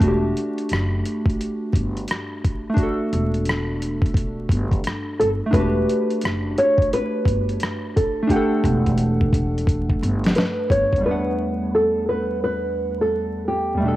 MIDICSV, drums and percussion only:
0, 0, Header, 1, 2, 480
1, 0, Start_track
1, 0, Key_signature, 1, "minor"
1, 0, Tempo, 689655
1, 10, Time_signature, 4, 2, 24, 8
1, 9719, End_track
2, 0, Start_track
2, 0, Title_t, "Drums"
2, 5, Note_on_c, 9, 36, 110
2, 11, Note_on_c, 9, 42, 85
2, 74, Note_off_c, 9, 36, 0
2, 81, Note_off_c, 9, 42, 0
2, 257, Note_on_c, 9, 42, 57
2, 326, Note_off_c, 9, 42, 0
2, 404, Note_on_c, 9, 42, 37
2, 473, Note_off_c, 9, 42, 0
2, 481, Note_on_c, 9, 42, 78
2, 508, Note_on_c, 9, 37, 113
2, 550, Note_off_c, 9, 42, 0
2, 578, Note_off_c, 9, 37, 0
2, 734, Note_on_c, 9, 42, 67
2, 803, Note_off_c, 9, 42, 0
2, 874, Note_on_c, 9, 36, 99
2, 902, Note_on_c, 9, 42, 34
2, 944, Note_off_c, 9, 36, 0
2, 971, Note_off_c, 9, 42, 0
2, 979, Note_on_c, 9, 42, 93
2, 1049, Note_off_c, 9, 42, 0
2, 1204, Note_on_c, 9, 36, 91
2, 1220, Note_on_c, 9, 42, 70
2, 1274, Note_off_c, 9, 36, 0
2, 1290, Note_off_c, 9, 42, 0
2, 1368, Note_on_c, 9, 42, 37
2, 1437, Note_off_c, 9, 42, 0
2, 1444, Note_on_c, 9, 42, 83
2, 1467, Note_on_c, 9, 37, 98
2, 1514, Note_off_c, 9, 42, 0
2, 1537, Note_off_c, 9, 37, 0
2, 1700, Note_on_c, 9, 36, 89
2, 1701, Note_on_c, 9, 42, 68
2, 1770, Note_off_c, 9, 36, 0
2, 1771, Note_off_c, 9, 42, 0
2, 1925, Note_on_c, 9, 36, 117
2, 1933, Note_on_c, 9, 42, 84
2, 1995, Note_off_c, 9, 36, 0
2, 2002, Note_off_c, 9, 42, 0
2, 2177, Note_on_c, 9, 42, 62
2, 2247, Note_off_c, 9, 42, 0
2, 2326, Note_on_c, 9, 42, 34
2, 2396, Note_off_c, 9, 42, 0
2, 2405, Note_on_c, 9, 42, 75
2, 2432, Note_on_c, 9, 37, 116
2, 2474, Note_off_c, 9, 42, 0
2, 2502, Note_off_c, 9, 37, 0
2, 2659, Note_on_c, 9, 42, 74
2, 2728, Note_off_c, 9, 42, 0
2, 2797, Note_on_c, 9, 36, 99
2, 2824, Note_on_c, 9, 42, 36
2, 2866, Note_off_c, 9, 36, 0
2, 2884, Note_on_c, 9, 36, 105
2, 2894, Note_off_c, 9, 42, 0
2, 2901, Note_on_c, 9, 42, 88
2, 2953, Note_off_c, 9, 36, 0
2, 2970, Note_off_c, 9, 42, 0
2, 3127, Note_on_c, 9, 36, 88
2, 3143, Note_on_c, 9, 42, 73
2, 3196, Note_off_c, 9, 36, 0
2, 3213, Note_off_c, 9, 42, 0
2, 3282, Note_on_c, 9, 36, 86
2, 3289, Note_on_c, 9, 42, 35
2, 3351, Note_off_c, 9, 36, 0
2, 3359, Note_off_c, 9, 42, 0
2, 3368, Note_on_c, 9, 42, 80
2, 3391, Note_on_c, 9, 37, 95
2, 3438, Note_off_c, 9, 42, 0
2, 3461, Note_off_c, 9, 37, 0
2, 3625, Note_on_c, 9, 42, 67
2, 3694, Note_off_c, 9, 42, 0
2, 3849, Note_on_c, 9, 36, 116
2, 3856, Note_on_c, 9, 42, 83
2, 3918, Note_off_c, 9, 36, 0
2, 3926, Note_off_c, 9, 42, 0
2, 4102, Note_on_c, 9, 42, 62
2, 4171, Note_off_c, 9, 42, 0
2, 4248, Note_on_c, 9, 42, 34
2, 4318, Note_off_c, 9, 42, 0
2, 4325, Note_on_c, 9, 42, 76
2, 4352, Note_on_c, 9, 37, 117
2, 4394, Note_off_c, 9, 42, 0
2, 4422, Note_off_c, 9, 37, 0
2, 4579, Note_on_c, 9, 42, 69
2, 4648, Note_off_c, 9, 42, 0
2, 4719, Note_on_c, 9, 36, 105
2, 4747, Note_on_c, 9, 42, 35
2, 4788, Note_off_c, 9, 36, 0
2, 4817, Note_off_c, 9, 42, 0
2, 4824, Note_on_c, 9, 42, 87
2, 4893, Note_off_c, 9, 42, 0
2, 5048, Note_on_c, 9, 36, 97
2, 5064, Note_on_c, 9, 42, 73
2, 5118, Note_off_c, 9, 36, 0
2, 5134, Note_off_c, 9, 42, 0
2, 5212, Note_on_c, 9, 42, 32
2, 5282, Note_off_c, 9, 42, 0
2, 5288, Note_on_c, 9, 42, 79
2, 5310, Note_on_c, 9, 37, 104
2, 5357, Note_off_c, 9, 42, 0
2, 5380, Note_off_c, 9, 37, 0
2, 5544, Note_on_c, 9, 36, 96
2, 5544, Note_on_c, 9, 42, 74
2, 5613, Note_off_c, 9, 36, 0
2, 5614, Note_off_c, 9, 42, 0
2, 5771, Note_on_c, 9, 36, 55
2, 5777, Note_on_c, 9, 42, 82
2, 5841, Note_off_c, 9, 36, 0
2, 5846, Note_off_c, 9, 42, 0
2, 6011, Note_on_c, 9, 36, 63
2, 6020, Note_on_c, 9, 42, 59
2, 6081, Note_off_c, 9, 36, 0
2, 6090, Note_off_c, 9, 42, 0
2, 6168, Note_on_c, 9, 36, 58
2, 6168, Note_on_c, 9, 42, 33
2, 6237, Note_off_c, 9, 42, 0
2, 6238, Note_off_c, 9, 36, 0
2, 6246, Note_on_c, 9, 42, 78
2, 6316, Note_off_c, 9, 42, 0
2, 6408, Note_on_c, 9, 36, 61
2, 6478, Note_off_c, 9, 36, 0
2, 6491, Note_on_c, 9, 36, 83
2, 6500, Note_on_c, 9, 42, 70
2, 6560, Note_off_c, 9, 36, 0
2, 6570, Note_off_c, 9, 42, 0
2, 6666, Note_on_c, 9, 42, 39
2, 6731, Note_on_c, 9, 36, 88
2, 6736, Note_off_c, 9, 42, 0
2, 6742, Note_on_c, 9, 42, 87
2, 6800, Note_off_c, 9, 36, 0
2, 6812, Note_off_c, 9, 42, 0
2, 6887, Note_on_c, 9, 36, 72
2, 6957, Note_off_c, 9, 36, 0
2, 6983, Note_on_c, 9, 42, 68
2, 7053, Note_off_c, 9, 42, 0
2, 7127, Note_on_c, 9, 42, 35
2, 7144, Note_on_c, 9, 38, 83
2, 7197, Note_off_c, 9, 42, 0
2, 7205, Note_on_c, 9, 42, 82
2, 7214, Note_off_c, 9, 38, 0
2, 7226, Note_on_c, 9, 38, 100
2, 7275, Note_off_c, 9, 42, 0
2, 7296, Note_off_c, 9, 38, 0
2, 7448, Note_on_c, 9, 36, 95
2, 7460, Note_on_c, 9, 42, 66
2, 7518, Note_off_c, 9, 36, 0
2, 7529, Note_off_c, 9, 42, 0
2, 7606, Note_on_c, 9, 36, 79
2, 7629, Note_on_c, 9, 42, 30
2, 7675, Note_off_c, 9, 36, 0
2, 7699, Note_off_c, 9, 42, 0
2, 9719, End_track
0, 0, End_of_file